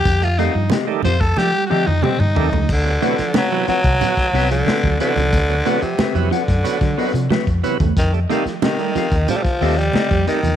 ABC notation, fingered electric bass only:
X:1
M:4/4
L:1/16
Q:1/4=91
K:Dmix
V:1 name="Fingered electric bass" clef=bass
=F,,3 G,, z2 F,,2 =F, z F, F,, z G,, _E,, ^C,, | D,,2 z4 z C,, z2 C,,2 z D,, z ^C,, | D,,2 z3 =F,, z ^F,, z D, z C, z =F,, z E,, | =F,,2 z4 z _E,, z2 E,,2 z F,, z =E,, |]